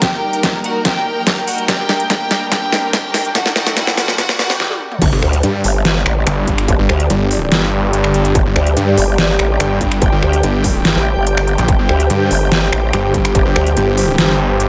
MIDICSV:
0, 0, Header, 1, 9, 480
1, 0, Start_track
1, 0, Key_signature, -2, "minor"
1, 0, Tempo, 416667
1, 20, Time_signature, 4, 2, 24, 8
1, 16919, End_track
2, 0, Start_track
2, 0, Title_t, "Ambient pad"
2, 0, Program_c, 0, 92
2, 0, Note_on_c, 0, 70, 73
2, 0, Note_on_c, 0, 79, 90
2, 2598, Note_on_c, 0, 74, 78
2, 3860, Note_off_c, 0, 70, 0
2, 3860, Note_off_c, 0, 79, 0
2, 5300, Note_off_c, 0, 74, 0
2, 5780, Note_on_c, 0, 67, 89
2, 7286, Note_on_c, 0, 79, 91
2, 16919, Note_off_c, 0, 67, 0
2, 16919, Note_off_c, 0, 79, 0
2, 16919, End_track
3, 0, Start_track
3, 0, Title_t, "Violin section"
3, 0, Program_c, 1, 48
3, 19, Note_on_c, 1, 67, 71
3, 19, Note_on_c, 1, 79, 91
3, 646, Note_off_c, 1, 67, 0
3, 646, Note_off_c, 1, 79, 0
3, 739, Note_on_c, 1, 78, 83
3, 740, Note_on_c, 1, 66, 72
3, 832, Note_off_c, 1, 78, 0
3, 961, Note_off_c, 1, 66, 0
3, 980, Note_on_c, 1, 67, 75
3, 980, Note_on_c, 1, 79, 98
3, 1606, Note_off_c, 1, 67, 0
3, 1606, Note_off_c, 1, 79, 0
3, 1700, Note_on_c, 1, 66, 71
3, 1700, Note_on_c, 1, 78, 84
3, 1792, Note_off_c, 1, 78, 0
3, 1921, Note_off_c, 1, 66, 0
3, 1939, Note_on_c, 1, 67, 75
3, 1939, Note_on_c, 1, 79, 92
3, 2401, Note_off_c, 1, 67, 0
3, 2401, Note_off_c, 1, 79, 0
3, 2419, Note_on_c, 1, 79, 99
3, 2420, Note_on_c, 1, 67, 73
3, 2881, Note_off_c, 1, 67, 0
3, 2881, Note_off_c, 1, 79, 0
3, 2900, Note_on_c, 1, 67, 85
3, 2900, Note_on_c, 1, 79, 106
3, 3361, Note_off_c, 1, 67, 0
3, 3361, Note_off_c, 1, 79, 0
3, 3379, Note_on_c, 1, 67, 78
3, 3379, Note_on_c, 1, 79, 101
3, 3841, Note_off_c, 1, 67, 0
3, 3841, Note_off_c, 1, 79, 0
3, 3859, Note_on_c, 1, 78, 99
3, 3860, Note_on_c, 1, 66, 78
3, 4081, Note_off_c, 1, 66, 0
3, 4081, Note_off_c, 1, 78, 0
3, 4100, Note_on_c, 1, 66, 82
3, 4100, Note_on_c, 1, 78, 108
3, 4321, Note_off_c, 1, 66, 0
3, 4321, Note_off_c, 1, 78, 0
3, 4339, Note_on_c, 1, 78, 102
3, 4340, Note_on_c, 1, 66, 81
3, 4561, Note_off_c, 1, 66, 0
3, 4561, Note_off_c, 1, 78, 0
3, 4580, Note_on_c, 1, 66, 84
3, 4580, Note_on_c, 1, 78, 105
3, 4801, Note_off_c, 1, 66, 0
3, 4801, Note_off_c, 1, 78, 0
3, 4820, Note_on_c, 1, 66, 85
3, 4820, Note_on_c, 1, 78, 105
3, 5041, Note_off_c, 1, 66, 0
3, 5041, Note_off_c, 1, 78, 0
3, 5060, Note_on_c, 1, 66, 81
3, 5060, Note_on_c, 1, 78, 101
3, 5281, Note_off_c, 1, 66, 0
3, 5281, Note_off_c, 1, 78, 0
3, 16919, End_track
4, 0, Start_track
4, 0, Title_t, "String section"
4, 0, Program_c, 2, 48
4, 0, Note_on_c, 2, 58, 71
4, 0, Note_on_c, 2, 70, 88
4, 19, Note_on_c, 2, 55, 79
4, 19, Note_on_c, 2, 63, 71
4, 1920, Note_off_c, 2, 63, 0
4, 1939, Note_on_c, 2, 62, 72
4, 3814, Note_off_c, 2, 58, 0
4, 3814, Note_off_c, 2, 70, 0
4, 3821, Note_off_c, 2, 55, 0
4, 3859, Note_on_c, 2, 54, 79
4, 3859, Note_on_c, 2, 57, 75
4, 3859, Note_on_c, 2, 69, 86
4, 5266, Note_off_c, 2, 62, 0
4, 5285, Note_off_c, 2, 54, 0
4, 5285, Note_off_c, 2, 57, 0
4, 5285, Note_off_c, 2, 69, 0
4, 5778, Note_on_c, 2, 50, 80
4, 5778, Note_on_c, 2, 67, 76
4, 5779, Note_on_c, 2, 55, 73
4, 5779, Note_on_c, 2, 74, 84
4, 13438, Note_off_c, 2, 74, 0
4, 13460, Note_on_c, 2, 72, 91
4, 16919, Note_off_c, 2, 50, 0
4, 16919, Note_off_c, 2, 55, 0
4, 16919, Note_off_c, 2, 67, 0
4, 16919, Note_off_c, 2, 72, 0
4, 16919, End_track
5, 0, Start_track
5, 0, Title_t, "Wobble bass"
5, 0, Program_c, 3, 39
5, 5780, Note_on_c, 3, 31, 99
5, 5883, Note_off_c, 3, 31, 0
5, 6019, Note_on_c, 3, 38, 97
5, 6241, Note_off_c, 3, 38, 0
5, 6499, Note_on_c, 3, 31, 102
5, 6961, Note_off_c, 3, 31, 0
5, 6979, Note_on_c, 3, 33, 90
5, 7201, Note_off_c, 3, 33, 0
5, 7700, Note_on_c, 3, 31, 99
5, 7803, Note_off_c, 3, 31, 0
5, 7940, Note_on_c, 3, 38, 102
5, 8161, Note_off_c, 3, 38, 0
5, 9620, Note_on_c, 3, 31, 102
5, 9723, Note_off_c, 3, 31, 0
5, 9860, Note_on_c, 3, 38, 100
5, 10081, Note_off_c, 3, 38, 0
5, 10340, Note_on_c, 3, 31, 105
5, 10801, Note_off_c, 3, 31, 0
5, 10820, Note_on_c, 3, 33, 99
5, 11041, Note_off_c, 3, 33, 0
5, 11540, Note_on_c, 3, 31, 97
5, 11643, Note_off_c, 3, 31, 0
5, 11780, Note_on_c, 3, 38, 97
5, 12001, Note_off_c, 3, 38, 0
5, 12623, Note_on_c, 3, 33, 103
5, 12843, Note_off_c, 3, 33, 0
5, 12863, Note_on_c, 3, 31, 98
5, 13323, Note_off_c, 3, 31, 0
5, 13459, Note_on_c, 3, 31, 97
5, 13563, Note_off_c, 3, 31, 0
5, 13700, Note_on_c, 3, 38, 102
5, 13921, Note_off_c, 3, 38, 0
5, 14180, Note_on_c, 3, 31, 102
5, 14641, Note_off_c, 3, 31, 0
5, 14660, Note_on_c, 3, 33, 92
5, 14881, Note_off_c, 3, 33, 0
5, 15379, Note_on_c, 3, 31, 93
5, 15483, Note_off_c, 3, 31, 0
5, 15620, Note_on_c, 3, 38, 95
5, 15841, Note_off_c, 3, 38, 0
5, 16919, End_track
6, 0, Start_track
6, 0, Title_t, "Detuned saw bass"
6, 0, Program_c, 4, 39
6, 5903, Note_on_c, 4, 31, 98
6, 6001, Note_off_c, 4, 31, 0
6, 6260, Note_on_c, 4, 43, 98
6, 6481, Note_off_c, 4, 43, 0
6, 7220, Note_on_c, 4, 31, 103
6, 7441, Note_off_c, 4, 31, 0
6, 7460, Note_on_c, 4, 31, 96
6, 7681, Note_off_c, 4, 31, 0
6, 7823, Note_on_c, 4, 31, 102
6, 7921, Note_off_c, 4, 31, 0
6, 8180, Note_on_c, 4, 31, 93
6, 8641, Note_off_c, 4, 31, 0
6, 8660, Note_on_c, 4, 31, 106
6, 9121, Note_off_c, 4, 31, 0
6, 9140, Note_on_c, 4, 31, 98
6, 9361, Note_off_c, 4, 31, 0
6, 9380, Note_on_c, 4, 31, 98
6, 9601, Note_off_c, 4, 31, 0
6, 9743, Note_on_c, 4, 31, 100
6, 9841, Note_off_c, 4, 31, 0
6, 10100, Note_on_c, 4, 43, 98
6, 10321, Note_off_c, 4, 43, 0
6, 11060, Note_on_c, 4, 31, 97
6, 11281, Note_off_c, 4, 31, 0
6, 11300, Note_on_c, 4, 31, 96
6, 11521, Note_off_c, 4, 31, 0
6, 11663, Note_on_c, 4, 31, 98
6, 11761, Note_off_c, 4, 31, 0
6, 12020, Note_on_c, 4, 31, 100
6, 12481, Note_off_c, 4, 31, 0
6, 12499, Note_on_c, 4, 31, 100
6, 12603, Note_off_c, 4, 31, 0
6, 13343, Note_on_c, 4, 34, 94
6, 13441, Note_off_c, 4, 34, 0
6, 13583, Note_on_c, 4, 31, 95
6, 13681, Note_off_c, 4, 31, 0
6, 13940, Note_on_c, 4, 43, 95
6, 14161, Note_off_c, 4, 43, 0
6, 14900, Note_on_c, 4, 31, 99
6, 15121, Note_off_c, 4, 31, 0
6, 15140, Note_on_c, 4, 31, 99
6, 15361, Note_off_c, 4, 31, 0
6, 15503, Note_on_c, 4, 31, 99
6, 15601, Note_off_c, 4, 31, 0
6, 15860, Note_on_c, 4, 31, 92
6, 16321, Note_off_c, 4, 31, 0
6, 16339, Note_on_c, 4, 31, 100
6, 16801, Note_off_c, 4, 31, 0
6, 16820, Note_on_c, 4, 31, 100
6, 16919, Note_off_c, 4, 31, 0
6, 16919, End_track
7, 0, Start_track
7, 0, Title_t, "Riser"
7, 0, Program_c, 5, 103
7, 0, Note_on_c, 5, 60, 76
7, 5300, Note_off_c, 5, 60, 0
7, 16919, End_track
8, 0, Start_track
8, 0, Title_t, "Swell"
8, 0, Program_c, 6, 103
8, 4819, Note_on_c, 6, 60, 80
8, 5779, Note_off_c, 6, 60, 0
8, 16919, End_track
9, 0, Start_track
9, 0, Title_t, "Drums"
9, 19, Note_on_c, 9, 36, 95
9, 19, Note_on_c, 9, 38, 59
9, 19, Note_on_c, 9, 42, 73
9, 135, Note_off_c, 9, 36, 0
9, 135, Note_off_c, 9, 38, 0
9, 135, Note_off_c, 9, 42, 0
9, 383, Note_on_c, 9, 42, 50
9, 498, Note_off_c, 9, 42, 0
9, 499, Note_on_c, 9, 38, 63
9, 499, Note_on_c, 9, 42, 73
9, 500, Note_on_c, 9, 36, 95
9, 615, Note_off_c, 9, 36, 0
9, 615, Note_off_c, 9, 38, 0
9, 615, Note_off_c, 9, 42, 0
9, 739, Note_on_c, 9, 42, 51
9, 855, Note_off_c, 9, 42, 0
9, 979, Note_on_c, 9, 36, 102
9, 979, Note_on_c, 9, 38, 63
9, 979, Note_on_c, 9, 42, 72
9, 1095, Note_off_c, 9, 36, 0
9, 1095, Note_off_c, 9, 38, 0
9, 1095, Note_off_c, 9, 42, 0
9, 1459, Note_on_c, 9, 36, 100
9, 1459, Note_on_c, 9, 38, 70
9, 1459, Note_on_c, 9, 42, 75
9, 1575, Note_off_c, 9, 36, 0
9, 1575, Note_off_c, 9, 38, 0
9, 1575, Note_off_c, 9, 42, 0
9, 1699, Note_on_c, 9, 46, 90
9, 1815, Note_off_c, 9, 46, 0
9, 1823, Note_on_c, 9, 42, 49
9, 1938, Note_off_c, 9, 42, 0
9, 1939, Note_on_c, 9, 36, 96
9, 1940, Note_on_c, 9, 38, 75
9, 1940, Note_on_c, 9, 42, 72
9, 2055, Note_off_c, 9, 36, 0
9, 2055, Note_off_c, 9, 38, 0
9, 2055, Note_off_c, 9, 42, 0
9, 2179, Note_on_c, 9, 38, 73
9, 2294, Note_off_c, 9, 38, 0
9, 2303, Note_on_c, 9, 42, 55
9, 2418, Note_off_c, 9, 42, 0
9, 2419, Note_on_c, 9, 36, 102
9, 2419, Note_on_c, 9, 38, 78
9, 2419, Note_on_c, 9, 42, 79
9, 2534, Note_off_c, 9, 38, 0
9, 2534, Note_off_c, 9, 42, 0
9, 2535, Note_off_c, 9, 36, 0
9, 2659, Note_on_c, 9, 38, 83
9, 2659, Note_on_c, 9, 42, 54
9, 2775, Note_off_c, 9, 38, 0
9, 2775, Note_off_c, 9, 42, 0
9, 2899, Note_on_c, 9, 36, 95
9, 2899, Note_on_c, 9, 38, 81
9, 2899, Note_on_c, 9, 42, 76
9, 3015, Note_off_c, 9, 36, 0
9, 3015, Note_off_c, 9, 38, 0
9, 3015, Note_off_c, 9, 42, 0
9, 3139, Note_on_c, 9, 38, 88
9, 3255, Note_off_c, 9, 38, 0
9, 3379, Note_on_c, 9, 36, 96
9, 3379, Note_on_c, 9, 38, 89
9, 3379, Note_on_c, 9, 42, 76
9, 3494, Note_off_c, 9, 36, 0
9, 3495, Note_off_c, 9, 38, 0
9, 3495, Note_off_c, 9, 42, 0
9, 3619, Note_on_c, 9, 38, 93
9, 3619, Note_on_c, 9, 46, 98
9, 3734, Note_off_c, 9, 38, 0
9, 3734, Note_off_c, 9, 46, 0
9, 3742, Note_on_c, 9, 42, 49
9, 3858, Note_off_c, 9, 42, 0
9, 3859, Note_on_c, 9, 36, 89
9, 3859, Note_on_c, 9, 38, 91
9, 3859, Note_on_c, 9, 42, 79
9, 3975, Note_off_c, 9, 36, 0
9, 3975, Note_off_c, 9, 38, 0
9, 3975, Note_off_c, 9, 42, 0
9, 3982, Note_on_c, 9, 38, 82
9, 4098, Note_off_c, 9, 38, 0
9, 4099, Note_on_c, 9, 38, 95
9, 4214, Note_off_c, 9, 38, 0
9, 4223, Note_on_c, 9, 38, 87
9, 4223, Note_on_c, 9, 42, 56
9, 4338, Note_off_c, 9, 38, 0
9, 4338, Note_off_c, 9, 42, 0
9, 4339, Note_on_c, 9, 36, 99
9, 4339, Note_on_c, 9, 38, 96
9, 4339, Note_on_c, 9, 42, 79
9, 4454, Note_off_c, 9, 38, 0
9, 4454, Note_off_c, 9, 42, 0
9, 4455, Note_off_c, 9, 36, 0
9, 4462, Note_on_c, 9, 38, 88
9, 4578, Note_off_c, 9, 38, 0
9, 4579, Note_on_c, 9, 38, 103
9, 4579, Note_on_c, 9, 46, 68
9, 4694, Note_off_c, 9, 38, 0
9, 4694, Note_off_c, 9, 46, 0
9, 4703, Note_on_c, 9, 38, 84
9, 4818, Note_off_c, 9, 38, 0
9, 4819, Note_on_c, 9, 36, 104
9, 4819, Note_on_c, 9, 38, 94
9, 4819, Note_on_c, 9, 42, 78
9, 4934, Note_off_c, 9, 38, 0
9, 4934, Note_off_c, 9, 42, 0
9, 4935, Note_off_c, 9, 36, 0
9, 4943, Note_on_c, 9, 38, 86
9, 5058, Note_off_c, 9, 38, 0
9, 5059, Note_on_c, 9, 38, 107
9, 5174, Note_off_c, 9, 38, 0
9, 5183, Note_on_c, 9, 38, 92
9, 5298, Note_off_c, 9, 38, 0
9, 5299, Note_on_c, 9, 38, 64
9, 5415, Note_off_c, 9, 38, 0
9, 5423, Note_on_c, 9, 48, 64
9, 5538, Note_off_c, 9, 48, 0
9, 5663, Note_on_c, 9, 45, 88
9, 5778, Note_off_c, 9, 45, 0
9, 5779, Note_on_c, 9, 36, 121
9, 5779, Note_on_c, 9, 42, 83
9, 5779, Note_on_c, 9, 49, 104
9, 5894, Note_off_c, 9, 42, 0
9, 5894, Note_off_c, 9, 49, 0
9, 5895, Note_off_c, 9, 36, 0
9, 6019, Note_on_c, 9, 26, 51
9, 6134, Note_off_c, 9, 26, 0
9, 6143, Note_on_c, 9, 42, 59
9, 6258, Note_off_c, 9, 42, 0
9, 6259, Note_on_c, 9, 42, 84
9, 6374, Note_off_c, 9, 42, 0
9, 6499, Note_on_c, 9, 46, 100
9, 6614, Note_off_c, 9, 46, 0
9, 6739, Note_on_c, 9, 38, 117
9, 6739, Note_on_c, 9, 42, 82
9, 6855, Note_off_c, 9, 38, 0
9, 6855, Note_off_c, 9, 42, 0
9, 6979, Note_on_c, 9, 26, 76
9, 7094, Note_off_c, 9, 26, 0
9, 7219, Note_on_c, 9, 26, 61
9, 7219, Note_on_c, 9, 42, 85
9, 7334, Note_off_c, 9, 26, 0
9, 7334, Note_off_c, 9, 42, 0
9, 7459, Note_on_c, 9, 36, 61
9, 7460, Note_on_c, 9, 42, 58
9, 7575, Note_off_c, 9, 36, 0
9, 7575, Note_off_c, 9, 42, 0
9, 7583, Note_on_c, 9, 26, 58
9, 7583, Note_on_c, 9, 42, 55
9, 7698, Note_off_c, 9, 26, 0
9, 7698, Note_off_c, 9, 42, 0
9, 7700, Note_on_c, 9, 36, 125
9, 7700, Note_on_c, 9, 42, 85
9, 7815, Note_off_c, 9, 36, 0
9, 7815, Note_off_c, 9, 42, 0
9, 7940, Note_on_c, 9, 26, 51
9, 8055, Note_off_c, 9, 26, 0
9, 8063, Note_on_c, 9, 42, 57
9, 8178, Note_off_c, 9, 42, 0
9, 8179, Note_on_c, 9, 42, 82
9, 8295, Note_off_c, 9, 42, 0
9, 8419, Note_on_c, 9, 46, 95
9, 8534, Note_off_c, 9, 46, 0
9, 8659, Note_on_c, 9, 38, 120
9, 8659, Note_on_c, 9, 42, 83
9, 8775, Note_off_c, 9, 38, 0
9, 8775, Note_off_c, 9, 42, 0
9, 9139, Note_on_c, 9, 42, 83
9, 9254, Note_off_c, 9, 42, 0
9, 9263, Note_on_c, 9, 26, 62
9, 9378, Note_off_c, 9, 26, 0
9, 9379, Note_on_c, 9, 42, 58
9, 9495, Note_off_c, 9, 42, 0
9, 9503, Note_on_c, 9, 42, 53
9, 9618, Note_off_c, 9, 42, 0
9, 9620, Note_on_c, 9, 36, 118
9, 9620, Note_on_c, 9, 42, 80
9, 9735, Note_off_c, 9, 36, 0
9, 9735, Note_off_c, 9, 42, 0
9, 9859, Note_on_c, 9, 26, 51
9, 9975, Note_off_c, 9, 26, 0
9, 9983, Note_on_c, 9, 42, 58
9, 10098, Note_off_c, 9, 42, 0
9, 10100, Note_on_c, 9, 42, 84
9, 10215, Note_off_c, 9, 42, 0
9, 10340, Note_on_c, 9, 46, 95
9, 10455, Note_off_c, 9, 46, 0
9, 10579, Note_on_c, 9, 38, 126
9, 10579, Note_on_c, 9, 42, 76
9, 10694, Note_off_c, 9, 38, 0
9, 10694, Note_off_c, 9, 42, 0
9, 10819, Note_on_c, 9, 26, 77
9, 10935, Note_off_c, 9, 26, 0
9, 11060, Note_on_c, 9, 26, 63
9, 11060, Note_on_c, 9, 42, 83
9, 11175, Note_off_c, 9, 26, 0
9, 11175, Note_off_c, 9, 42, 0
9, 11299, Note_on_c, 9, 42, 55
9, 11300, Note_on_c, 9, 36, 67
9, 11415, Note_off_c, 9, 36, 0
9, 11415, Note_off_c, 9, 42, 0
9, 11423, Note_on_c, 9, 26, 59
9, 11423, Note_on_c, 9, 42, 53
9, 11538, Note_off_c, 9, 26, 0
9, 11538, Note_off_c, 9, 42, 0
9, 11540, Note_on_c, 9, 36, 120
9, 11540, Note_on_c, 9, 42, 75
9, 11655, Note_off_c, 9, 36, 0
9, 11655, Note_off_c, 9, 42, 0
9, 11780, Note_on_c, 9, 26, 51
9, 11895, Note_off_c, 9, 26, 0
9, 11903, Note_on_c, 9, 42, 56
9, 12018, Note_off_c, 9, 42, 0
9, 12020, Note_on_c, 9, 42, 77
9, 12135, Note_off_c, 9, 42, 0
9, 12259, Note_on_c, 9, 36, 68
9, 12259, Note_on_c, 9, 46, 86
9, 12374, Note_off_c, 9, 46, 0
9, 12375, Note_off_c, 9, 36, 0
9, 12499, Note_on_c, 9, 38, 127
9, 12499, Note_on_c, 9, 42, 73
9, 12614, Note_off_c, 9, 38, 0
9, 12614, Note_off_c, 9, 42, 0
9, 12979, Note_on_c, 9, 42, 83
9, 13095, Note_off_c, 9, 42, 0
9, 13102, Note_on_c, 9, 26, 63
9, 13218, Note_off_c, 9, 26, 0
9, 13219, Note_on_c, 9, 42, 52
9, 13335, Note_off_c, 9, 42, 0
9, 13343, Note_on_c, 9, 42, 52
9, 13458, Note_off_c, 9, 42, 0
9, 13459, Note_on_c, 9, 36, 118
9, 13459, Note_on_c, 9, 42, 74
9, 13575, Note_off_c, 9, 36, 0
9, 13575, Note_off_c, 9, 42, 0
9, 13699, Note_on_c, 9, 26, 56
9, 13815, Note_off_c, 9, 26, 0
9, 13823, Note_on_c, 9, 42, 53
9, 13938, Note_off_c, 9, 42, 0
9, 13939, Note_on_c, 9, 42, 79
9, 14054, Note_off_c, 9, 42, 0
9, 14179, Note_on_c, 9, 46, 89
9, 14295, Note_off_c, 9, 46, 0
9, 14419, Note_on_c, 9, 38, 119
9, 14419, Note_on_c, 9, 42, 75
9, 14535, Note_off_c, 9, 38, 0
9, 14535, Note_off_c, 9, 42, 0
9, 14659, Note_on_c, 9, 26, 88
9, 14775, Note_off_c, 9, 26, 0
9, 14899, Note_on_c, 9, 26, 63
9, 14899, Note_on_c, 9, 42, 75
9, 15014, Note_off_c, 9, 26, 0
9, 15014, Note_off_c, 9, 42, 0
9, 15139, Note_on_c, 9, 36, 64
9, 15140, Note_on_c, 9, 42, 53
9, 15255, Note_off_c, 9, 36, 0
9, 15255, Note_off_c, 9, 42, 0
9, 15263, Note_on_c, 9, 26, 64
9, 15263, Note_on_c, 9, 42, 50
9, 15378, Note_off_c, 9, 26, 0
9, 15378, Note_off_c, 9, 42, 0
9, 15379, Note_on_c, 9, 36, 107
9, 15379, Note_on_c, 9, 42, 76
9, 15494, Note_off_c, 9, 42, 0
9, 15495, Note_off_c, 9, 36, 0
9, 15619, Note_on_c, 9, 26, 55
9, 15735, Note_off_c, 9, 26, 0
9, 15743, Note_on_c, 9, 42, 52
9, 15858, Note_off_c, 9, 42, 0
9, 15860, Note_on_c, 9, 42, 73
9, 15975, Note_off_c, 9, 42, 0
9, 16099, Note_on_c, 9, 46, 94
9, 16214, Note_off_c, 9, 46, 0
9, 16339, Note_on_c, 9, 38, 112
9, 16339, Note_on_c, 9, 42, 76
9, 16455, Note_off_c, 9, 38, 0
9, 16455, Note_off_c, 9, 42, 0
9, 16819, Note_on_c, 9, 42, 79
9, 16919, Note_off_c, 9, 42, 0
9, 16919, End_track
0, 0, End_of_file